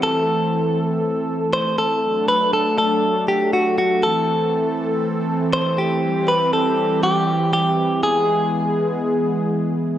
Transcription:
Already playing: E3 C4
0.03 A3 A4
1.53 C5
1.78 A4
2.03 F#3 D4 A4
2.28 B4
2.53 A4
2.78 A4
3.28 G4
3.53 F#4
3.78 F#4
4.03 E3 C4 A4
5.53 C5
5.78 G4
6.03 G3 G4
6.28 B4
6.53 A4
7.03 G4
7.53 G4
8.03 G#3 B3 G#4

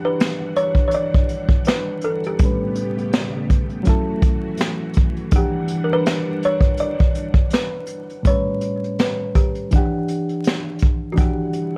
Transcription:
Already playing: E3 G3 D4 G4 F#5
0.05 B4
0.20 snare, closed hi-hat
0.56 C#5, closed hi-hat
0.75 kick, closed hi-hat
0.88 C#5, closed hi-hat
0.94 D5
1.14 kick
1.29 closed hi-hat
1.49 kick, closed hi-hat
1.65 B4, snare, closed hi-hat
2.01 A4, closed hi-hat
2.24 G4, closed hi-hat
2.39 A2 C#3 G3 A3 B3 G4, kick, closed hi-hat
2.43 C#4 B4
2.75 closed hi-hat
2.98 closed hi-hat
3.13 snare, closed hi-hat
3.50 kick, closed hi-hat
3.70 closed hi-hat
3.83 E3 F#3 C#4 F#4, closed hi-hat
3.87 E4 A4, kick
4.22 kick, closed hi-hat
4.57 snare, closed hi-hat
4.93 kick, closed hi-hat
5.16 closed hi-hat
5.31 E3 G3 D4 F#5, kick, closed hi-hat
5.36 G4 F#5
5.68 closed hi-hat
5.84 A#4
5.93 B4
6.06 snare, closed hi-hat
6.42 C#5, closed hi-hat
6.61 kick, closed hi-hat
6.77 D5, closed hi-hat
7.00 kick
7.15 closed hi-hat
7.34 kick
7.50 B4, snare, closed hi-hat
7.86 closed hi-hat
8.09 closed hi-hat
8.23 A2 G3, kick, closed hi-hat
8.27 C#4 B4 C#5
8.61 closed hi-hat
8.84 closed hi-hat
8.99 B4, snare, closed hi-hat
9.35 G4, kick, closed hi-hat
9.55 closed hi-hat
9.71 E3 D4, kick, closed hi-hat
9.76 G4 F#5
10.08 closed hi-hat
10.29 closed hi-hat
10.44 snare, closed hi-hat
10.79 kick, closed hi-hat
11.12 E3 D4 F#4
11.17 D3 G3 E4 G4 F#5, kick, closed hi-hat
11.53 closed hi-hat

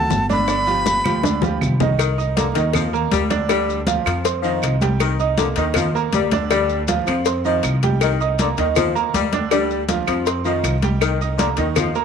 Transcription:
Already playing: F#3 F#4 A4 A5
0.10 G1, high bongo, low bongo, high conga, maracas
0.29 D3 D4 D5 B5, high bongo, high conga, maracas
0.48 D3 D4 D5, high bongo, high conga, claves, maracas
0.67 F3 F4 G4, high bongo, high conga, maracas
0.86 high bongo, high conga, maracas
1.04 D2 F3 F4 G4, high conga, claves, maracas
1.23 D3 D4 D5, high bongo, high conga, maracas
1.42 F3 F4 G4, low bongo, high conga, maracas
1.61 C2, low conga, claves, maracas
1.80 D#3 D#4 D#5, low bongo, low conga, maracas
1.98 D#3, cowbell, high conga, claves, maracas
2.18 D#4 D#5 D#6, high conga, maracas
2.37 D3 A#3 A#4 A#5, cowbell, high conga, maracas
2.54 D#2 D#3 D#4 D#5, cowbell, high conga, maracas
2.73 F3, cowbell, high conga, low conga, claves, maracas
2.93 A#3 A#4 A#5, high conga, maracas
3.11 D2 G3, cowbell, high conga, maracas
3.30 D3 D4 D5, cowbell, high conga, maracas
3.49 D3 G3 D4 D5, cowbell, high conga, claves, maracas
3.69 high conga, maracas
3.87 F3 F4 F5, cowbell, high conga, maracas
4.05 F2 F3, cowbell, high conga, claves, maracas
4.25 C4 C5 C6, cowbell, high conga, maracas
4.43 D#3 F3 D#4 D#5, high conga, maracas
4.62 C2, cowbell, high conga, claves, maracas
4.81 G3 G4 G5, cowbell, high conga, maracas
5.00 D#3, cowbell, high conga, claves, maracas
5.19 D#4 D#5 D#6, high conga, maracas
5.38 D3 A#3 A#4 A#5, cowbell, high conga, maracas
5.56 D#2 D#3 D#4 D#5, cowbell, high conga, maracas
5.74 F3, cowbell, high conga, low conga, claves, maracas
5.94 A#3 A#4 A#5, high conga, maracas
6.13 D2 G3, cowbell, high conga, maracas
6.31 D3 D4 D5, cowbell, high conga, maracas
6.50 D3 G3 D4 D5, cowbell, high conga, claves, maracas
6.69 high conga, maracas
6.88 F3 F4 F5, cowbell, high conga, maracas
7.07 F2 F3, cowbell, high conga, claves, maracas
7.25 C4 C5 C6, cowbell, high conga, maracas
7.45 D#3 F3 D#4 D#5, high conga, maracas
7.63 C2, cowbell, high conga, claves, maracas
7.83 G3 G4 G5, cowbell, high conga, maracas
8.01 D#3, cowbell, high conga, claves, maracas
8.20 D#4 D#5 D#6, high conga, maracas
8.39 D3 A#3 A#4 A#5, cowbell, high conga, maracas
8.57 D#2 D#3 D#4 D#5, cowbell, high conga, maracas
8.76 F3, cowbell, high conga, low conga, claves, maracas
8.95 A#3 A#4 A#5, high conga, maracas
9.13 D2 G3, cowbell, high conga, maracas
9.33 D3 D4 D5, cowbell, high conga, maracas
9.51 D3 G3 D4 D5, cowbell, high conga, claves, maracas
9.71 high conga, maracas
9.89 F3 F4 F5, cowbell, high conga, maracas
10.07 F2 F3, cowbell, high conga, claves, maracas
10.26 C4 C5 C6, cowbell, high conga, maracas
10.44 D#3 F3 D#4 D#5, high conga, maracas
10.63 C2, cowbell, high conga, claves, maracas
10.82 G3 G4 G5, cowbell, high conga, maracas
11.00 D#3, cowbell, high conga, claves, maracas
11.21 D#4 D#5 D#6, high conga, maracas
11.38 D3 A#3 A#4 A#5, cowbell, high conga, maracas
11.57 D#2 D#3 D#4 D#5, cowbell, high conga, maracas
11.76 F3, cowbell, high conga, low conga, claves, maracas
11.95 A#3 A#4 A#5, high conga, maracas

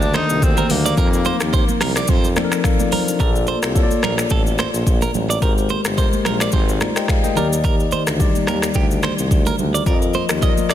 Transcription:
Already playing: D2 D#3 A#3 D4 G4
0.02 shaker
0.13 D#3 A#3 D4 D#4 A4 C5, finger snap, cross-stick, high conga, shaker
0.22 A#4
0.30 C2, shaker
0.42 D2 C4, kick, shaker
0.57 A#4, high conga, shaker
0.70 D2 A#3, open hi-hat, low conga, shaker
0.86 D5, shaker
0.96 F2 F3 C4 D#4 A#4, kick, shaker
1.13 shaker
1.25 C5, high conga, shaker
1.40 D#2, finger snap, cross-stick, shaker
1.53 C5, kick, shaker
1.69 high conga, shaker
1.81 C2 A#4, finger snap, cross-stick, open hi-hat, low conga, shaker
1.96 D5, finger snap, cross-stick, shaker
2.08 F2 C5, kick, low conga, shaker
2.24 shaker
2.35 F3 C4 D#4 A4 D5, finger snap, cross-stick, high conga, shaker
2.44 A#4
2.52 finger snap, cross-stick, shaker
2.64 A4 F5, finger snap, kick, cross-stick, shaker
2.80 F4 D5, high conga, shaker
2.92 D#4 A#4 C5, open hi-hat, low conga, shaker
3.07 D4 A#4, shaker
3.19 A#1 A#3 F4 A4 A#4 D5, kick, shaker
3.35 shaker
3.47 C5, high conga, shaker
3.63 C2, finger snap, cross-stick, shaker
3.74 A#3 F4 A4 C#5, kick, shaker
3.83 D5
3.91 high conga, shaker
4.03 A#1 A#4, finger snap, cross-stick, low conga, shaker
4.18 finger snap, cross-stick, shaker
4.30 A1 A4, kick, low conga, shaker
4.47 shaker
4.58 C5, finger snap, cross-stick, high conga, shaker
4.74 A#1, shaker
4.87 A#1, kick, shaker
5.02 A#4, high conga, shaker
5.14 A1, low conga, shaker
5.30 D5, shaker
5.41 G#1 G#3 G4 A#4 C5, kick, shaker
5.58 shaker
5.69 C5, high conga, shaker
5.85 G1, finger snap, cross-stick, shaker
5.96 G#3 G4 A#4 C5, kick, shaker
6.13 high conga, shaker
6.25 A#1 A#4, finger snap, cross-stick, low conga, shaker
6.40 D5, finger snap, cross-stick, shaker
6.52 G#1 C5, kick, low conga, shaker
6.68 D#4 C5, shaker
6.80 F4 D5 A#5, finger snap, cross-stick, high conga, shaker
6.96 G4 D#5 G5, finger snap, cross-stick, shaker
7.08 G#4 F5, finger snap, kick, cross-stick, shaker
7.24 A#4 D#5 G5, high conga, shaker
7.35 D#2 D#3 D#4 G4 A#4 D5, low conga, shaker
7.53 shaker
7.64 A#4, kick, shaker
7.80 shaker
7.91 C5, high conga, shaker
8.07 D2, finger snap, cross-stick, shaker
8.18 G3 D#4 G4 D5, kick, shaker
8.35 high conga, shaker
8.47 D#2 A#4, finger snap, cross-stick, low conga, shaker
8.62 finger snap, cross-stick, shaker
8.74 D2 G4, kick, low conga, shaker
8.91 shaker
9.03 C5, finger snap, cross-stick, high conga, shaker
9.18 C2, shaker
9.31 D2, kick, shaker
9.46 A#4, high conga, shaker
9.59 D2, low conga, shaker
9.74 D5, shaker
9.85 F2 F3 F4 A#4 D5, kick, shaker
9.94 D#5
10.02 shaker
10.14 C5, high conga, shaker
10.29 D#2, finger snap, cross-stick, shaker
10.41 F3 F4 A#4 D5 D#5, kick, shaker
10.50 D#5
10.57 high conga, shaker
10.69 C2 D5, finger snap, cross-stick, shaker

